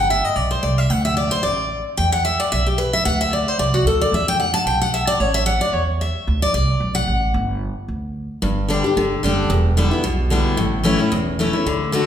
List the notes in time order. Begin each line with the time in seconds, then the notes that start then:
Already playing: G1
0.10 E5
0.24 D#5
0.36 B1 D5
0.51 C5
0.63 C2 D5
0.78 E5
0.90 D2 F#5
1.05 E5
1.17 D5
1.31 C5
1.43 A1 D5
1.97 E2 G5
2.12 F#5
2.25 E5
2.40 D5
2.52 B1 E5
2.66 G4
2.78 B4
2.93 E5
3.05 D2 F#5
3.21 E5
3.33 D5
3.48 C5
3.58 C2 D5
3.74 F#4
3.85 D2 A4
4.01 D5
4.12 E2 E5
4.28 G5
4.40 F#5
4.54 A5
4.65 B1 G5
4.82 F#5
4.94 E5
5.07 D5
5.20 A1 C#5
5.34 E5
5.46 F#5
5.61 D5
5.73 E2 C#5
6.01 E5
6.27 D2
6.42 D5
6.54 C2 D5
6.80 B1
6.95 F#5
7.07 A1
7.34 G1
7.88 D2
8.42 G1 G2
8.68 D3 G3 D4 G4
8.84 D4 G4
8.96 G1 D3
9.23 F#1 D3 G3 D4 G4
9.50 E1 E2
9.77 D3 G3 B3 E4
9.91 B3 E4
10.04 B1 B2
10.30 D3 G3 B3 E4
10.57 A1 A2
10.83 E3 A3 C#4 E4
10.99 C#4 E4
11.12 E1 E2
11.39 E3 A3 C#4 E4
11.53 C#4 E4
11.66 D2 D3
11.92 D3 A3 D4 F#4